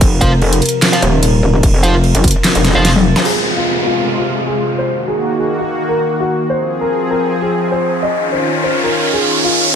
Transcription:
Already playing: C3 F3 A#4
0.01 F1, kick, closed hi-hat, crash
0.21 F4 C5 F5, kick, closed hi-hat
0.42 crash
0.53 closed hi-hat
0.62 closed hi-hat
0.66 closed hi-hat
0.69 closed hi-hat
0.82 snare, clap, closed hi-hat, crash
0.93 F4 C5 F5, closed hi-hat
1.02 D#1, closed hi-hat
1.23 closed hi-hat, crash
1.43 D#1
1.63 kick, closed hi-hat, crash
1.74 F1
1.83 F4 C5 F5, closed hi-hat
2.04 crash
2.15 F#1, closed hi-hat
2.24 kick, closed hi-hat
2.28 closed hi-hat
2.31 closed hi-hat
2.44 snare, clap, closed hi-hat, crash
2.55 F1, closed hi-hat
2.65 snare, closed hi-hat
2.75 F1 F4 C5 F5
2.85 snare, closed hi-hat, crash
2.96 high tom
3.16 snare, zap
3.25 C3 G#3 F4 G#4, crash, downlifter
3.57 F4
3.86 F4
4.17 F4
4.47 G#4
4.78 C5
4.88 D#3 A#3 F#4
5.08 G#4
5.39 G#4
5.59 F#4
5.89 A#4
6.20 F#4
6.50 F3 C4 G#4 C5, riser
6.81 A#4
7.11 A#4
7.42 G#4
7.71 C5
8.03 D#5
8.12 D#3 C#4 F4
8.32 C5
8.63 C5
8.84 A#4
9.13 G#4
9.44 F4

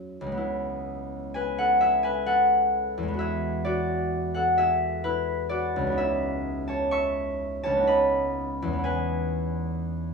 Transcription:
Already playing: F#2 F#3 A3 F#4 G#4 E5 F#5
0.21 C#2
0.27 G#3
0.32 B3
0.37 E4
1.34 B4 G#5
1.58 A4 F#5
1.81 G#4 E5
2.03 B4 G#5
2.26 A4 F#5
2.98 E2
3.03 G#3
3.08 B3
3.14 F#4
3.19 G#4 E5
3.65 F#4 D5
4.34 A4 F#5
4.58 G#4 E5
5.04 E4 B4
5.49 F#4 D5
5.76 C#2
5.81 G#3
5.87 B3
5.92 D#4
5.98 G#4 E5
6.68 C#5 A5
6.91 E5 C#6
7.63 C#2 C#5 A5
7.71 G#3
7.76 B3
7.82 D#4
7.87 D#5 B5
8.62 E2
8.68 G#3
8.73 B3
8.78 E4
8.84 B4 G#5

